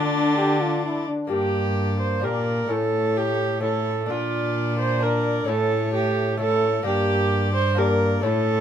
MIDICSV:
0, 0, Header, 1, 6, 480
1, 0, Start_track
1, 0, Tempo, 464037
1, 1352, Time_signature, 3, 2, 24, 8
1, 8900, End_track
2, 0, Start_track
2, 0, Title_t, "Violin"
2, 0, Program_c, 0, 40
2, 0, Note_on_c, 0, 74, 83
2, 1082, Note_off_c, 0, 74, 0
2, 1346, Note_on_c, 0, 74, 52
2, 2270, Note_off_c, 0, 74, 0
2, 2317, Note_on_c, 0, 74, 58
2, 2792, Note_on_c, 0, 73, 58
2, 2808, Note_off_c, 0, 74, 0
2, 3750, Note_off_c, 0, 73, 0
2, 3756, Note_on_c, 0, 73, 58
2, 4223, Note_off_c, 0, 73, 0
2, 4235, Note_on_c, 0, 74, 56
2, 5170, Note_off_c, 0, 74, 0
2, 5184, Note_on_c, 0, 74, 59
2, 5667, Note_on_c, 0, 73, 61
2, 5682, Note_off_c, 0, 74, 0
2, 6615, Note_off_c, 0, 73, 0
2, 6621, Note_on_c, 0, 73, 59
2, 7086, Note_off_c, 0, 73, 0
2, 7092, Note_on_c, 0, 74, 66
2, 8031, Note_off_c, 0, 74, 0
2, 8046, Note_on_c, 0, 74, 62
2, 8515, Note_on_c, 0, 73, 63
2, 8531, Note_off_c, 0, 74, 0
2, 8900, Note_off_c, 0, 73, 0
2, 8900, End_track
3, 0, Start_track
3, 0, Title_t, "Viola"
3, 0, Program_c, 1, 41
3, 0, Note_on_c, 1, 62, 87
3, 1081, Note_off_c, 1, 62, 0
3, 1340, Note_on_c, 1, 67, 73
3, 2027, Note_off_c, 1, 67, 0
3, 2066, Note_on_c, 1, 72, 71
3, 2319, Note_on_c, 1, 70, 64
3, 2334, Note_off_c, 1, 72, 0
3, 2798, Note_on_c, 1, 69, 74
3, 2813, Note_off_c, 1, 70, 0
3, 3278, Note_on_c, 1, 67, 79
3, 3294, Note_off_c, 1, 69, 0
3, 3749, Note_off_c, 1, 67, 0
3, 3755, Note_on_c, 1, 69, 73
3, 4240, Note_on_c, 1, 65, 78
3, 4256, Note_off_c, 1, 69, 0
3, 4945, Note_off_c, 1, 65, 0
3, 4951, Note_on_c, 1, 72, 79
3, 5199, Note_on_c, 1, 70, 69
3, 5215, Note_off_c, 1, 72, 0
3, 5661, Note_off_c, 1, 70, 0
3, 5667, Note_on_c, 1, 69, 85
3, 6132, Note_off_c, 1, 69, 0
3, 6138, Note_on_c, 1, 67, 80
3, 6610, Note_off_c, 1, 67, 0
3, 6617, Note_on_c, 1, 69, 88
3, 7086, Note_off_c, 1, 69, 0
3, 7092, Note_on_c, 1, 67, 85
3, 7794, Note_off_c, 1, 67, 0
3, 7800, Note_on_c, 1, 72, 82
3, 8050, Note_on_c, 1, 70, 75
3, 8065, Note_off_c, 1, 72, 0
3, 8504, Note_off_c, 1, 70, 0
3, 8510, Note_on_c, 1, 69, 92
3, 8900, Note_off_c, 1, 69, 0
3, 8900, End_track
4, 0, Start_track
4, 0, Title_t, "Lute"
4, 0, Program_c, 2, 24
4, 0, Note_on_c, 2, 50, 55
4, 0, Note_on_c, 2, 57, 53
4, 0, Note_on_c, 2, 62, 56
4, 0, Note_on_c, 2, 65, 52
4, 1101, Note_off_c, 2, 50, 0
4, 1289, Note_off_c, 2, 57, 0
4, 1296, Note_off_c, 2, 62, 0
4, 1305, Note_off_c, 2, 65, 0
4, 1315, Note_on_c, 2, 58, 42
4, 1328, Note_on_c, 2, 62, 44
4, 1340, Note_on_c, 2, 67, 42
4, 1359, Note_on_c, 2, 43, 49
4, 2259, Note_off_c, 2, 58, 0
4, 2271, Note_on_c, 2, 58, 41
4, 2273, Note_off_c, 2, 62, 0
4, 2277, Note_off_c, 2, 43, 0
4, 2279, Note_off_c, 2, 67, 0
4, 2286, Note_on_c, 2, 62, 39
4, 2304, Note_on_c, 2, 67, 41
4, 2317, Note_on_c, 2, 46, 47
4, 2754, Note_off_c, 2, 46, 0
4, 2757, Note_off_c, 2, 58, 0
4, 2765, Note_off_c, 2, 62, 0
4, 2765, Note_on_c, 2, 57, 46
4, 2774, Note_off_c, 2, 67, 0
4, 2778, Note_on_c, 2, 61, 43
4, 2789, Note_on_c, 2, 64, 44
4, 2807, Note_on_c, 2, 45, 50
4, 3710, Note_off_c, 2, 57, 0
4, 3716, Note_off_c, 2, 61, 0
4, 3722, Note_off_c, 2, 64, 0
4, 3725, Note_on_c, 2, 57, 42
4, 3734, Note_on_c, 2, 61, 42
4, 3749, Note_on_c, 2, 64, 43
4, 4196, Note_off_c, 2, 64, 0
4, 4197, Note_off_c, 2, 45, 0
4, 4200, Note_on_c, 2, 62, 44
4, 4202, Note_off_c, 2, 57, 0
4, 4207, Note_off_c, 2, 61, 0
4, 4241, Note_on_c, 2, 46, 54
4, 5142, Note_off_c, 2, 62, 0
4, 5163, Note_on_c, 2, 62, 45
4, 5631, Note_off_c, 2, 46, 0
4, 5633, Note_on_c, 2, 57, 46
4, 5640, Note_off_c, 2, 62, 0
4, 5644, Note_on_c, 2, 61, 50
4, 5661, Note_on_c, 2, 64, 47
4, 5669, Note_on_c, 2, 45, 58
4, 6578, Note_off_c, 2, 57, 0
4, 6583, Note_off_c, 2, 61, 0
4, 6592, Note_off_c, 2, 64, 0
4, 6592, Note_on_c, 2, 57, 46
4, 6605, Note_on_c, 2, 61, 47
4, 6622, Note_on_c, 2, 64, 45
4, 7060, Note_off_c, 2, 61, 0
4, 7061, Note_off_c, 2, 45, 0
4, 7064, Note_on_c, 2, 58, 51
4, 7071, Note_off_c, 2, 57, 0
4, 7074, Note_off_c, 2, 64, 0
4, 7078, Note_on_c, 2, 62, 52
4, 7093, Note_on_c, 2, 67, 48
4, 7110, Note_on_c, 2, 43, 57
4, 8001, Note_off_c, 2, 58, 0
4, 8013, Note_on_c, 2, 58, 49
4, 8014, Note_off_c, 2, 62, 0
4, 8021, Note_off_c, 2, 67, 0
4, 8028, Note_on_c, 2, 62, 46
4, 8046, Note_on_c, 2, 67, 49
4, 8497, Note_off_c, 2, 43, 0
4, 8499, Note_off_c, 2, 58, 0
4, 8502, Note_on_c, 2, 57, 53
4, 8507, Note_off_c, 2, 62, 0
4, 8513, Note_on_c, 2, 61, 51
4, 8516, Note_off_c, 2, 67, 0
4, 8525, Note_on_c, 2, 64, 51
4, 8541, Note_on_c, 2, 45, 53
4, 8900, Note_off_c, 2, 45, 0
4, 8900, Note_off_c, 2, 57, 0
4, 8900, Note_off_c, 2, 61, 0
4, 8900, Note_off_c, 2, 64, 0
4, 8900, End_track
5, 0, Start_track
5, 0, Title_t, "Trombone"
5, 0, Program_c, 3, 57
5, 0, Note_on_c, 3, 62, 67
5, 331, Note_off_c, 3, 62, 0
5, 377, Note_on_c, 3, 67, 85
5, 629, Note_on_c, 3, 65, 70
5, 645, Note_off_c, 3, 67, 0
5, 869, Note_off_c, 3, 65, 0
5, 878, Note_on_c, 3, 64, 74
5, 1115, Note_on_c, 3, 62, 64
5, 1131, Note_off_c, 3, 64, 0
5, 1350, Note_off_c, 3, 62, 0
5, 1356, Note_on_c, 3, 58, 54
5, 2275, Note_off_c, 3, 58, 0
5, 2319, Note_on_c, 3, 58, 58
5, 2802, Note_on_c, 3, 57, 54
5, 2817, Note_off_c, 3, 58, 0
5, 3578, Note_off_c, 3, 57, 0
5, 3754, Note_on_c, 3, 57, 53
5, 4225, Note_on_c, 3, 62, 53
5, 4240, Note_off_c, 3, 57, 0
5, 5184, Note_off_c, 3, 62, 0
5, 5190, Note_on_c, 3, 62, 60
5, 5673, Note_on_c, 3, 57, 58
5, 5688, Note_off_c, 3, 62, 0
5, 6614, Note_off_c, 3, 57, 0
5, 6620, Note_on_c, 3, 57, 60
5, 7085, Note_off_c, 3, 57, 0
5, 7091, Note_on_c, 3, 58, 62
5, 7748, Note_off_c, 3, 58, 0
5, 8036, Note_on_c, 3, 58, 65
5, 8491, Note_off_c, 3, 58, 0
5, 8526, Note_on_c, 3, 57, 67
5, 8900, Note_off_c, 3, 57, 0
5, 8900, End_track
6, 0, Start_track
6, 0, Title_t, "Cello"
6, 0, Program_c, 4, 42
6, 0, Note_on_c, 4, 50, 73
6, 1145, Note_off_c, 4, 50, 0
6, 1351, Note_on_c, 4, 43, 61
6, 2318, Note_on_c, 4, 46, 52
6, 2333, Note_off_c, 4, 43, 0
6, 2793, Note_off_c, 4, 46, 0
6, 2799, Note_on_c, 4, 45, 58
6, 4233, Note_on_c, 4, 46, 63
6, 4249, Note_off_c, 4, 45, 0
6, 5659, Note_off_c, 4, 46, 0
6, 5666, Note_on_c, 4, 45, 62
6, 7072, Note_off_c, 4, 45, 0
6, 7102, Note_on_c, 4, 43, 73
6, 8506, Note_off_c, 4, 43, 0
6, 8532, Note_on_c, 4, 45, 63
6, 8900, Note_off_c, 4, 45, 0
6, 8900, End_track
0, 0, End_of_file